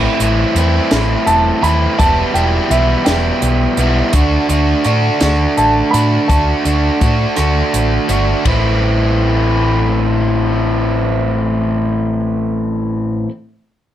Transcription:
Already playing: A2 E3 A3 C4 E4
0.20 A1 A2 E3 A3 C4 E4, closed hi-hat
0.55 E2 A2 E3 A3 C4 E4, closed hi-hat
0.91 A1 A2 E3 A3 C4 E4, snare, closed hi-hat
1.26 E1 A5, closed hi-hat
1.62 D#2 A2 E3 A3 C4 E4 B5, closed hi-hat
1.98 E1 E2 B2 E3 G3 B3 E4 A5, kick, closed hi-hat
2.34 E1 E2 B2 E3 G3 B3 E4 G5, closed hi-hat
2.70 B1 E2 B2 E3 G3 B3 E4 E5, closed hi-hat
3.05 E1 E2 B2 E3 G3 B3 E4 G5, snare, closed hi-hat
3.42 B1, closed hi-hat
3.77 B1 E2 B2 E3 G3 B3 E4, closed hi-hat
4.13 D2 D3 A3 D4 F#4, kick, closed hi-hat
4.49 D2 D3 A3 D4 F#4, closed hi-hat
4.84 A2 D3 A3 D4 F#4, closed hi-hat
5.20 D2 D3 A3 D4 F#4, snare, closed hi-hat
5.57 A1 A5, closed hi-hat
5.91 A2 D3 A3 D4 F#4 B5, closed hi-hat
6.28 D2 D3 A3 D4 F#4 A5, kick, closed hi-hat
6.65 D2 D3 A3 D4 F#4, closed hi-hat
7.01 A2 D3 A3 D4 F#4, kick, closed hi-hat
7.36 D2 D3 A3 D4 F#4, cross-stick, closed hi-hat
7.74 A1, closed hi-hat
8.08 G1 D3 A3 D4 F#4, closed hi-hat
8.44 A1 A2 E3 A3 C4 E4, kick, ride

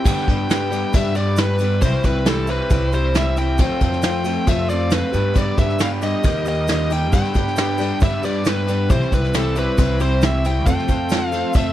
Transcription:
0.04 G2 D3 G3 B3 D4 G4 B4 G5, kick, crash, shaker
0.18 snare
0.27 G2 G3 B3 D4 G4, kick, crash
0.48 G3 B3 D4 G4, snare, crash, shaker
0.71 G2 D3 G3 B3 D4 G4, crash, shaker
0.93 G2 D3 G3 B3 D4 G4 E5, kick, crash, shaker
1.15 G2 D3 G3 B3 D4 G4 D5, crash, shaker
1.36 G3 B3 D4 G4 B4, snare, crash, shaker
1.58 G3 B3 D4 G4, crash, shaker
1.81 C2 C3 E3 G3 C4 E4 G4 C5, kick, crash, shaker
2.03 C2 G3 C4 E4 B4, kick, crash, shaker
2.25 E3 G3 C4 E4 A4, snare, crash, shaker
2.47 C3 E3 G3 C4 E4 B4, crash, shaker
2.69 C2 C3 E3 G3 C4 E4, kick, crash, shaker
2.92 C3 E3 G3 C4 E4 C5, crash, shaker
3.14 E3 G3 C4 E4 E5, snare, crash, shaker
3.37 G3 C4 E4 G5, crash, shaker
3.58 F2 C3 F3 A3 C4 F4 A4 C5 G5, kick, crash, shaker
3.81 F2 F3 A3 C4 F4, kick, crash, shaker
3.93 snare
4.02 F3 A3 C4 F4, snare, crash, shaker
4.24 F2 C3 F3 A3 C4 F4, crash, shaker
4.47 F2 C3 F3 A3 C4 F4 E5, kick, crash, shaker
4.69 F2 C3 F3 A3 C4 F4 D5, crash, shaker
4.91 F3 A3 C4 F4 B4, snare, crash, shaker
5.13 G2 D3 G3 B3 D4 G4 B4, crash, shaker
5.34 G2 D3 G3 B3 D4 G4, kick, crash, shaker
5.38 D5
5.56 G2 G3 B3 D4 G4 E5, kick, crash, shaker
5.70 snare
5.78 G3 B3 D4 G4 F5, snare, crash, shaker
6.01 G2 D3 G3 B3 D4 G4 D#5, crash, shaker
6.23 D#2 D#3 G3 A#3 D#4 G4 A#4, kick, crash, shaker
6.45 D#3 G3 A#3 D#4 G4 D#5, crash, shaker
6.68 G3 A#3 D#4 G4, snare, crash, shaker
6.72 D#5
6.90 A#3 D#4 G4 G5, crash, shaker
7.12 G2 D3 G3 B3 D4 G4 B4 G5, kick, crash, shaker
7.25 snare
7.34 G2 G3 B3 D4 G4, kick, crash, shaker
7.48 snare
7.56 G3 B3 D4 G4, snare, crash, shaker
7.78 G2 D3 G3 B3 D4 G4, crash, shaker
8.00 G2 D3 G3 B3 D4 G4 E5, kick, crash, shaker
8.22 G2 D3 G3 B3 D4 G4 D5, crash, shaker
8.44 G3 B3 D4 G4, snare, crash, shaker
8.48 B4
8.67 G3 B3 D4 G4, crash, shaker
8.89 C2 C3 E3 G3 C4 E4 G4 C5, kick, crash, shaker
9.02 snare
9.11 C2 G3 C4 E4 G4 B4, kick, crash, shaker
9.24 snare
9.34 E3 G3 C4 E4 G4 A4, snare, crash, shaker
9.56 C3 G3 C4 E4 G4 B4, crash, shaker
9.78 C2 C3 E3 G3 C4 E4 G4, kick, crash, shaker
9.99 C3 G3 C4 E4 G4 C5, crash, shaker
10.21 E3 G3 C4 E4 G4 E5, snare, crash, shaker
10.44 G3 C4 E4 G4 G5, crash, shaker
10.66 F2 C3 F3 A3 C4 F4 A4 C5 G5, kick, crash, shaker
10.79 snare
10.88 F2 F3 A3 C4 F4 A4, kick, crash, shaker
11.09 F3 A3 C4 F4 A4, snare, crash, shaker
11.27 F5
11.32 F3 A3 C4 F4 A4, crash, shaker
11.53 F2 C3 F3 A3 C4 F4 A4 E5, kick, crash, shaker

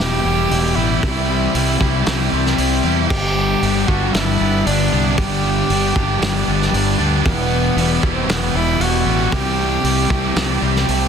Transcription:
Already playing: B3 E4 G4
0.00 E1 E2 B2 E3 G3 E4 G4, snare
0.24 E1 B2 E3 G3 B3 E4 G4
0.51 E1 E2 B2 E3 E4, open hi-hat
0.76 A1 B2 E3 G3 B3 E4 G4
0.80 E3
1.02 C2 C3 E3 G3 C4 E4 G4, kick, open hi-hat
1.28 G3 C4
1.54 C2 C3 E3 G3 C4 E4 G4, open hi-hat
1.80 C2 G3 C4 E4 G4, kick
2.05 C2 C3 E3 G3 C4 E4 G4, snare, open hi-hat
2.32 C2 G3 C4 E4 G4
2.46 snare
2.58 C2 C3 G3 C4 E4, open hi-hat
2.84 E2 G3 C4 E4 G4
3.09 G1 G2 D3 G3 B3 D4 G4, kick, crash
3.36 D3 G3 B3
3.61 G1 G2 D3 G3 B3 D4 G4, open hi-hat
3.87 G1 D3 G3 B3 D4 F#4 G4, kick
4.13 G1 G2 D3 G3 B3 D4 E4 G4, snare, open hi-hat
4.39 G1 D3 G3 B3 D4 G4
4.66 G1 G2 D3 G3 D4, open hi-hat
4.92 C2 D3 G3 B3 D4 G4
5.17 G1 G2 D3 G3 B3 D4 G4, kick, open hi-hat
5.43 D3 G3 B3
5.69 G1 G2 D3 G3 B3 D4 G4, open hi-hat
5.95 G1 D3 G3 B3 D4 G4, kick
6.21 G1 G2 D3 G3 B3 D4 G4, snare, open hi-hat
6.47 G1 D3 G3 B3 D4 G4
6.62 snare
6.73 G1 G2 D3 G3 D4, open hi-hat
6.99 D2 D3 G3 B3 D4 G4
7.25 E1 E2 B2 E3 G3 B3 G4, kick, open hi-hat
7.52 B2 E3 B3
7.76 E1 E2 B2 E3 G3 B3 G4, open hi-hat
8.01 E1 B2 E3 G3 B3 E4 G4, kick
8.13 C4
8.28 E1 E2 B2 E3 G3 B3 G4, snare, open hi-hat
8.54 E1 B2 E3 G3 B3 E4 G4
8.79 E1 E2 B2 E3 E4 F#4, open hi-hat
9.06 A1 B2 E3 G3 B3 G4
9.32 C2 C3 E3 G3 C4 G4, kick, open hi-hat
9.59 G3 A3 C4
9.84 C2 C3 E3 G3 C4 G4, open hi-hat
10.10 C2 G3 A3 C4 G4, kick
10.36 C2 C3 E3 G3 C4 G4, snare, open hi-hat
10.62 C2 G3 C4 G4
10.76 snare
10.88 C2 C3 G3 A3 C4, open hi-hat

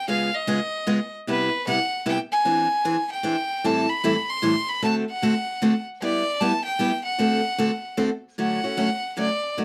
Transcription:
0.08 C#3 G#3 B3 F4 G#4 F5
0.35 D#5
0.47 C#3 G#3 B3 F4 G#4
0.87 C#3 G#3 B3 F4 G#4
1.27 C3 G3 B3 E4 G4 B4
1.67 C3 G3 B3 E4 G4 F#5
2.06 C3 G3 B3 E4 G4 G5
2.32 G#5
2.45 E3 C4 D4 G#4
2.85 E3 C4 D4 G#4
3.12 G5
3.23 E3 C4 D4 G#4
3.64 A2 E3 G3 C4 E4 A4 A5
3.90 B5
4.04 A2 E3 G3 C4 E4 A4
4.29 C6
4.42 A2 E3 G3 C4 E4 A4
4.69 B5
4.82 D3 A3 C4 F#4 A4 A5
5.10 F#5
5.22 D3 A3 C4 F#4 A4
5.62 D3 A3 C4 F#4 A4
6.02 G3 B3 E4 G4 D5
6.40 G3 B3 E4 G4 A5
6.65 G5
6.79 G3 B3 E4 G4
7.05 F#5
7.19 D3 A3 C4 F#4 A4
7.58 D3 A3 C4 F#4 A4
7.97 D3 A3 C4 F#4 A4
8.38 D3 F#3 A3 C#4 F#4 F#5
8.64 A3 C#4 F#4
8.77 D3 F#3 A3 C#4 F#4
9.17 D3 F#3 A3 C#4 F#4 D5
9.57 B2 F#3 A3 D#4 F#4

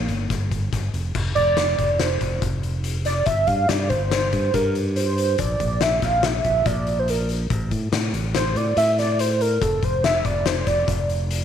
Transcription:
Already playing: A#3
0.08 G1, closed hi-hat
0.30 G1, kick, snare, closed hi-hat
0.51 kick, closed hi-hat
0.72 G1, kick, snare, closed hi-hat
0.94 F1, closed hi-hat
1.15 F1, kick, crash
1.35 F1 D5, kick, closed hi-hat
1.57 snare, closed hi-hat
1.78 F1, kick, closed hi-hat
1.92 D5
1.99 C5, snare, closed hi-hat
2.21 F1, kick, closed hi-hat
2.42 F1, kick, closed hi-hat
2.63 closed hi-hat
2.84 closed hi-hat
3.05 D5, snare, closed hi-hat
3.26 G1 E5, kick, closed hi-hat
3.47 G2 F5, kick, closed hi-hat
3.68 G2 D5, snare, closed hi-hat
3.89 G1 C5, kick, closed hi-hat
4.12 snare, closed hi-hat
4.33 G2, kick, closed hi-hat
4.54 G2 A#4, kick, closed hi-hat
4.75 closed hi-hat
4.96 C5, closed hi-hat
5.18 closed hi-hat
5.38 A#1 D5, kick, closed hi-hat
5.60 A#1, kick, closed hi-hat
5.81 E5, snare, closed hi-hat
6.02 A#1 F5, kick, snare, closed hi-hat
6.23 E5, snare, closed hi-hat
6.44 A#1, kick, closed hi-hat
6.66 A#1 D5, kick, closed hi-hat
6.87 closed hi-hat
6.99 C5
7.08 A#4, closed hi-hat
7.29 closed hi-hat
7.50 A1, kick, closed hi-hat
7.71 A2, kick, closed hi-hat
7.92 A2, snare, closed hi-hat
8.13 A1, closed hi-hat
8.35 C5, snare, closed hi-hat
8.55 A2 D5, closed hi-hat
8.77 A2 E5, closed hi-hat
8.98 D5, snare, closed hi-hat
9.19 C5, closed hi-hat
9.41 A#4, closed hi-hat
9.61 F1 A4, kick, closed hi-hat
9.83 F1 C5, kick, closed hi-hat
10.04 E5, snare, closed hi-hat
10.25 F1 D5, kick, closed hi-hat
10.46 C5, snare, closed hi-hat
10.67 F1 D5, kick, snare, closed hi-hat
10.88 F1, kick, closed hi-hat
11.09 closed hi-hat
11.31 closed hi-hat

